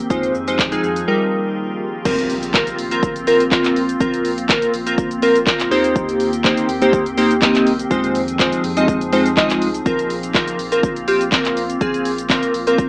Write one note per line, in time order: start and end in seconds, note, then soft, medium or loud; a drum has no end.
0.00 1.05 C4 medium
0.10 0.31 F2 loud
0.10 1.07 F3 medium
0.10 0.33 G#3 medium
0.10 0.33 D#4 medium
0.10 1.07 D#4 medium
0.10 0.33 F4 medium
0.10 1.07 G#4 medium
0.10 0.33 C5 medium
0.10 kick loud
0.10 shaker medium
0.23 closed hi-hat medium
0.23 shaker soft
0.35 0.76 F2 loud
0.35 shaker medium
0.47 0.62 G#3 medium
0.47 0.62 D#4 medium
0.47 0.62 F4 medium
0.47 0.62 C5 medium
0.47 closed hi-hat medium
0.47 shaker medium
0.59 kick loud
0.59 clap loud
0.59 shaker medium
0.72 1.08 G#3 medium
0.72 1.07 D#4 medium
0.72 1.07 F4 medium
0.72 1.08 G#4 loud
0.72 closed hi-hat medium
0.72 shaker medium
0.83 1.04 F2 medium
0.83 shaker medium
0.96 closed hi-hat medium
0.96 shaker medium
1.08 2.04 D#3 medium
1.08 1.86 G3 medium
1.08 2.04 A#3 medium
1.08 1.86 D#4 medium
1.08 2.04 F4 medium
1.08 1.86 F4 medium
1.08 2.04 G4 medium
1.08 1.86 A#4 medium
2.05 2.67 A#1 loud
2.05 7.87 A#3 medium
2.05 2.36 C4 medium
2.05 5.68 C4 medium
2.05 2.36 F4 medium
2.05 5.68 F4 loud
2.05 2.36 A#4 loud
2.05 kick loud
2.05 crash loud
2.05 impact medium
2.05 shaker medium
2.19 closed hi-hat medium
2.19 shaker medium
2.30 open hi-hat medium
2.30 shaker medium
2.43 closed hi-hat medium
2.43 shaker medium
2.54 2.77 C4 medium
2.54 2.77 F4 medium
2.54 2.77 A#4 medium
2.54 kick loud
2.54 clap loud
2.54 shaker medium
2.67 closed hi-hat medium
2.67 shaker medium
2.79 3.51 A#1 medium
2.79 open hi-hat medium
2.79 shaker medium
2.91 3.14 C4 medium
2.91 3.14 F4 medium
2.91 3.14 A#4 loud
2.91 closed hi-hat medium
2.91 shaker medium
3.03 kick loud
3.03 shaker medium
3.16 closed hi-hat medium
3.16 shaker medium
3.27 3.43 C4 medium
3.27 3.43 F4 medium
3.27 3.43 A#4 loud
3.27 open hi-hat medium
3.27 shaker medium
3.40 closed hi-hat medium
3.40 shaker medium
3.51 3.82 C4 medium
3.51 3.82 F4 medium
3.51 3.82 A#4 loud
3.51 kick loud
3.51 clap loud
3.51 shaker medium
3.65 3.95 A#1 loud
3.65 clap medium
3.65 closed hi-hat medium
3.65 shaker medium
3.76 open hi-hat medium
3.76 shaker medium
3.89 closed hi-hat medium
3.89 shaker medium
4.00 4.62 A#1 loud
4.00 4.31 C4 medium
4.00 4.31 F4 medium
4.00 4.31 A#4 loud
4.00 kick loud
4.00 shaker medium
4.14 closed hi-hat medium
4.14 shaker medium
4.25 open hi-hat medium
4.25 shaker medium
4.38 closed hi-hat medium
4.38 shaker medium
4.49 4.72 C4 medium
4.49 4.72 F4 medium
4.49 4.72 A#4 loud
4.49 kick loud
4.49 clap loud
4.49 shaker medium
4.62 closed hi-hat medium
4.62 shaker medium
4.74 5.46 A#1 medium
4.74 open hi-hat medium
4.74 shaker medium
4.86 5.09 C4 medium
4.86 5.09 F4 medium
4.86 5.09 A#4 loud
4.86 closed hi-hat medium
4.86 shaker medium
4.98 kick loud
4.98 shaker medium
5.11 closed hi-hat medium
5.11 shaker medium
5.22 5.38 C4 medium
5.22 5.38 F4 medium
5.22 5.38 A#4 loud
5.22 open hi-hat medium
5.22 shaker medium
5.35 closed hi-hat medium
5.35 shaker medium
5.47 5.70 C4 medium
5.47 5.71 F4 medium
5.47 5.71 A#4 loud
5.47 kick loud
5.47 clap loud
5.47 shaker medium
5.60 5.69 A#1 loud
5.60 clap medium
5.60 closed hi-hat medium
5.60 shaker medium
5.71 6.53 D#2 loud
5.71 7.89 D#3 medium
5.71 6.30 A#3 medium
5.71 6.30 C4 medium
5.71 9.82 C4 medium
5.71 6.30 D#4 medium
5.71 6.30 G4 medium
5.71 7.89 G4 loud
5.71 6.30 C5 loud
5.71 open hi-hat medium
5.71 shaker medium
5.84 closed hi-hat medium
5.84 shaker medium
5.96 kick loud
5.96 shaker medium
6.09 closed hi-hat medium
6.09 shaker medium
6.20 open hi-hat medium
6.20 shaker medium
6.33 closed hi-hat medium
6.33 shaker medium
6.44 6.67 A#3 medium
6.44 6.67 C4 medium
6.44 6.67 D#4 medium
6.44 6.67 G4 medium
6.44 6.67 C5 loud
6.44 kick loud
6.44 clap loud
6.44 shaker medium
6.57 closed hi-hat medium
6.57 shaker medium
6.69 7.41 D#2 medium
6.69 open hi-hat medium
6.69 shaker medium
6.82 7.04 A#3 medium
6.82 7.04 C4 medium
6.82 7.04 D#4 medium
6.82 7.04 G4 medium
6.82 7.04 C5 loud
6.82 closed hi-hat medium
6.82 shaker medium
6.93 kick loud
6.93 shaker medium
7.06 closed hi-hat medium
7.06 shaker medium
7.17 7.33 A#3 loud
7.17 7.33 C4 medium
7.17 7.33 D#4 medium
7.17 7.33 G4 medium
7.17 7.33 C5 loud
7.17 open hi-hat medium
7.17 shaker medium
7.31 closed hi-hat medium
7.31 shaker medium
7.42 7.72 A#3 medium
7.42 7.73 C4 medium
7.42 7.73 D#4 medium
7.42 7.73 G4 medium
7.42 7.73 D#5 loud
7.42 kick loud
7.42 clap loud
7.42 shaker medium
7.55 7.85 C2 loud
7.55 clap medium
7.55 closed hi-hat medium
7.55 shaker medium
7.67 open hi-hat medium
7.67 shaker soft
7.79 closed hi-hat medium
7.79 shaker medium
7.91 8.52 F2 loud
7.91 9.84 F3 medium
7.91 8.21 G#3 medium
7.91 8.21 C4 medium
7.91 8.21 D#4 medium
7.91 9.84 D#4 medium
7.91 8.21 F4 medium
7.91 9.84 G#4 medium
7.91 8.21 C5 loud
7.91 kick loud
7.91 shaker medium
8.04 closed hi-hat medium
8.04 shaker medium
8.15 open hi-hat medium
8.15 shaker medium
8.28 closed hi-hat medium
8.28 shaker medium
8.39 8.62 G#3 medium
8.39 8.62 C4 medium
8.39 8.62 D#4 medium
8.39 8.62 F4 medium
8.39 8.62 C5 medium
8.39 kick loud
8.39 clap loud
8.39 shaker medium
8.52 closed hi-hat medium
8.52 shaker medium
8.64 9.36 F2 medium
8.64 open hi-hat medium
8.64 shaker medium
8.77 8.99 G#3 medium
8.77 8.99 C4 medium
8.77 8.99 D#4 medium
8.77 8.99 F4 medium
8.77 9.00 D#5 loud
8.77 closed hi-hat medium
8.77 shaker medium
8.88 kick loud
8.88 shaker medium
9.01 closed hi-hat medium
9.01 shaker medium
9.12 9.28 G#3 medium
9.12 9.28 C4 medium
9.12 9.28 D#4 medium
9.12 9.28 F4 medium
9.12 9.29 C5 loud
9.12 open hi-hat medium
9.12 shaker medium
9.26 closed hi-hat medium
9.26 shaker medium
9.37 9.68 G#3 medium
9.37 9.68 C4 medium
9.37 9.68 D#4 medium
9.37 9.68 F4 medium
9.37 9.68 D#5 loud
9.37 kick loud
9.37 clap loud
9.37 shaker medium
9.50 9.80 C2 loud
9.50 clap medium
9.50 closed hi-hat medium
9.50 shaker medium
9.62 open hi-hat medium
9.62 shaker medium
9.74 closed hi-hat medium
9.74 shaker medium
9.86 10.48 A#1 loud
9.86 12.89 A#3 medium
9.86 10.16 C4 medium
9.86 12.89 C4 medium
9.86 10.16 F4 medium
9.86 12.89 F4 medium
9.86 10.17 A#4 loud
9.86 kick loud
9.86 shaker medium
9.99 closed hi-hat medium
9.99 shaker medium
10.10 open hi-hat medium
10.10 shaker medium
10.23 closed hi-hat medium
10.23 shaker medium
10.34 10.57 C4 medium
10.34 10.57 F4 medium
10.34 10.58 A#4 loud
10.34 kick loud
10.34 clap medium
10.34 clap loud
10.34 shaker medium
10.48 closed hi-hat medium
10.48 shaker medium
10.59 11.32 A#1 medium
10.59 open hi-hat medium
10.59 shaker medium
10.72 10.94 C4 medium
10.72 10.95 F4 medium
10.72 10.95 A#4 loud
10.72 closed hi-hat medium
10.72 shaker medium
10.83 kick loud
10.83 shaker medium
10.96 closed hi-hat medium
10.96 shaker medium
11.08 11.23 C4 medium
11.08 11.24 F4 medium
11.08 11.24 G4 loud
11.08 open hi-hat medium
11.08 shaker medium
11.21 closed hi-hat medium
11.21 shaker medium
11.32 11.63 C4 medium
11.32 11.63 F4 medium
11.32 11.63 A#4 loud
11.32 kick loud
11.32 clap loud
11.32 clap medium
11.32 shaker medium
11.45 11.75 A#1 loud
11.45 clap medium
11.45 closed hi-hat medium
11.45 shaker medium
11.57 open hi-hat medium
11.57 shaker medium
11.70 closed hi-hat medium
11.70 shaker medium
11.81 12.43 A#1 loud
11.81 12.11 C4 medium
11.81 12.12 F4 medium
11.81 12.12 G#4 loud
11.81 kick loud
11.81 shaker medium
11.94 closed hi-hat medium
11.94 shaker medium
12.05 open hi-hat medium
12.05 shaker medium
12.18 closed hi-hat medium
12.18 shaker medium
12.30 12.52 C4 medium
12.30 12.53 F4 medium
12.30 12.53 A#4 loud
12.30 kick loud
12.30 clap loud
12.30 shaker medium
12.43 closed hi-hat medium
12.43 shaker medium
12.54 12.89 A#1 medium
12.54 open hi-hat medium
12.54 shaker medium
12.67 12.89 C4 medium
12.67 12.89 F4 medium
12.67 12.89 A#4 loud
12.67 closed hi-hat medium
12.67 shaker medium
12.78 kick loud
12.78 shaker medium